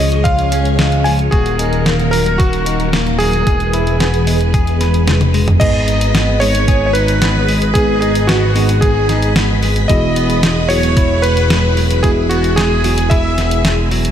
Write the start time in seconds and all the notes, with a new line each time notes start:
Already playing: C#2 F3 G#3 C#4 G#4 C#5 D#5
0.00 F3
0.12 closed hi-hat
0.24 F4 F5, kick, closed hi-hat
0.39 closed hi-hat
0.52 C#4, closed hi-hat
0.65 closed hi-hat
0.79 G#3, snare, closed hi-hat
0.92 closed hi-hat
1.04 F3 G#5, open hi-hat
1.19 closed hi-hat
1.31 D#1 D#3 F#3 A#3 F#4 G#4 A#4, kick, closed hi-hat
1.46 closed hi-hat
1.59 D#4, closed hi-hat
1.73 closed hi-hat
1.86 A#3, snare, closed hi-hat
1.99 closed hi-hat
2.11 F#3 A#4, open hi-hat
2.26 closed hi-hat
2.38 F#4, kick, closed hi-hat
2.53 closed hi-hat
2.66 D#4, closed hi-hat
2.80 closed hi-hat
2.93 A#3, snare, closed hi-hat
3.07 closed hi-hat
3.19 F#3 G#4, open hi-hat
3.33 closed hi-hat
3.47 E1 E3 G#3 B3 G#4 B4, kick, closed hi-hat
3.60 closed hi-hat
3.73 E4, closed hi-hat
3.87 closed hi-hat
4.00 B3, snare, closed hi-hat
4.14 closed hi-hat
4.27 G#3, open hi-hat
4.41 closed hi-hat
4.54 G#4, kick, closed hi-hat
4.67 closed hi-hat
4.81 B4, snare, closed hi-hat
4.94 closed hi-hat
5.08 G#3, snare, closed hi-hat, high tom
5.21 closed hi-hat, high tom
5.34 G#3, open hi-hat
5.48 closed hi-hat, mid tom
5.60 G#1 G#3 B3 D#4 G#4 B4 D#5 B5, kick, closed hi-hat, crash
5.88 D#4, closed hi-hat
6.01 closed hi-hat
6.15 B3, snare, closed hi-hat
6.40 G#3 B3 D#4 G#4 B4 C#5, open hi-hat
6.55 closed hi-hat
6.68 G#4, kick, closed hi-hat
6.86 C#5
6.93 D#4 B4, closed hi-hat
7.08 closed hi-hat
7.22 B3, snare, closed hi-hat
7.49 G#3, open hi-hat
7.62 closed hi-hat
7.74 G#3 B3 D#4 G#4 B4, kick, closed hi-hat
8.01 D#4 G#4, closed hi-hat
8.15 closed hi-hat
8.27 B3 F#4, snare, closed hi-hat
8.56 G#3 B3 D#4 G#4 B4, open hi-hat
8.69 closed hi-hat
8.81 G#4, kick, closed hi-hat
9.09 D#4, snare, closed hi-hat
9.22 closed hi-hat
9.36 B3, snare, closed hi-hat
9.63 G#3, open hi-hat
9.76 closed hi-hat
9.88 E1 G#3 B3 E4 F#4 G#4 D#5 F#5, kick, closed hi-hat
10.16 B3, closed hi-hat
10.30 closed hi-hat
10.43 G#3, snare, closed hi-hat
10.69 F#3 G#3 B3 E4 F#4 G#4 C#5, open hi-hat
10.83 closed hi-hat
10.97 E4, kick, closed hi-hat
11.22 B3 B4, closed hi-hat
11.37 closed hi-hat
11.50 G#3, snare, closed hi-hat
11.77 F#3, open hi-hat
11.91 closed hi-hat
12.03 G#3 B3 E4 F#4 G#4 G#5, kick, closed hi-hat
12.29 B3 F#4, closed hi-hat
12.44 closed hi-hat
12.56 G#3 G#4, snare, closed hi-hat
12.84 F#3 G#3 B3 E4 F#4 G#4, open hi-hat
12.98 closed hi-hat
13.10 E4 E5, kick, closed hi-hat
13.38 B3, snare, closed hi-hat
13.51 closed hi-hat
13.65 G#3, snare, closed hi-hat
13.91 F#3, open hi-hat
14.05 closed hi-hat